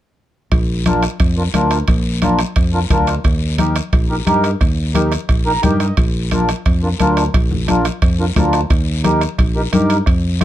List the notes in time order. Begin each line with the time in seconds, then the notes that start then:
0.52 A#1, bombo low, bombo rim, high conga, high timbale, long guiro
0.86 D4 F4 A#4, bombo rim, high conga, high timbale, short guiro
1.03 bombo rim, high timbale, short guiro
1.20 F2, bombo low, bombo rim, high conga, high timbale, long guiro
1.37 D4 F4 A#4
1.54 D2 D4 F4 A#4, bombo rim, high conga, high timbale, short guiro
1.71 bombo rim, high timbale, short guiro
1.88 A#1, bombo low, bombo rim, high conga, high timbale, long guiro
2.22 D4 F4 A#4, bombo rim, high conga, high timbale, short guiro
2.39 bombo rim, high timbale, short guiro
2.56 F2, bombo low, bombo rim, high conga, high timbale, long guiro
2.73 D4 F4 A#4
2.90 D2 D4 F4 A#4, bombo low, bombo rim, high conga, low conga, high timbale, short guiro
3.07 bombo rim, high timbale, short guiro
3.24 D#2, bombo low, bombo rim, high conga, high timbale, long guiro
3.58 D#4 G4 A#4, bombo rim, high conga, high timbale, short guiro
3.75 bombo rim, high timbale, short guiro
3.93 A#1, bombo low, bombo rim, high conga, high timbale, long guiro
4.09 D#4 G4 A#4
4.26 G2 D#4 G4 A#4, bombo rim, high conga, high timbale, short guiro
4.44 bombo rim, high timbale, short guiro
4.61 D#2, bombo low, bombo rim, high conga, high timbale, long guiro
4.95 D#4 G4 A#4, bombo rim, high conga, high timbale, short guiro
5.12 bombo rim, high timbale, short guiro
5.29 A#1, bombo low, bombo rim, high conga, high timbale, long guiro
5.46 D#4 G4 A#4 A#5
5.63 G2 D#4 G4 A#4 G5, bombo rim, high conga, low conga, high timbale, short guiro
5.80 D#5, bombo rim, high timbale, short guiro
5.97 A#1, bombo low, bombo rim, high conga, high timbale, long guiro
6.31 D4 F4 A#4, bombo rim, high conga, high timbale, short guiro
6.49 bombo rim, high timbale, short guiro
6.66 F2, bombo low, bombo rim, high conga, high timbale, long guiro
6.83 D4 F4 A#4
7.00 D2 D4 F4 A#4, bombo rim, high conga, high timbale, short guiro
7.17 bombo rim, high timbale, short guiro
7.34 A#1, bombo low, bombo rim, high conga, high timbale, long guiro
7.51 low conga
7.68 D4 F4 A#4, bombo rim, high conga, high timbale, short guiro
7.85 bombo rim, high timbale, short guiro
8.02 F2, bombo low, bombo rim, high conga, high timbale, long guiro
8.19 D4 F4 A#4
8.36 D2 D4 F4 A#4, bombo rim, high conga, low conga, high timbale, short guiro
8.53 bombo rim, high timbale, short guiro
8.70 D#2, bombo low, bombo rim, high conga, high timbale, long guiro
9.04 D#4 G4 A#4, bombo rim, high conga, high timbale, short guiro
9.21 bombo rim, high timbale, short guiro
9.38 A#1, bombo low, bombo rim, high conga, high timbale, long guiro
9.56 D#4 G4 A#4
9.73 G2 D#4 G4 A#4, bombo rim, high conga, high timbale, short guiro
9.90 bombo rim, high timbale, short guiro
10.06 F2, bombo low, bombo rim, high conga, high timbale, long guiro
10.41 C4 F4, bombo rim, short guiro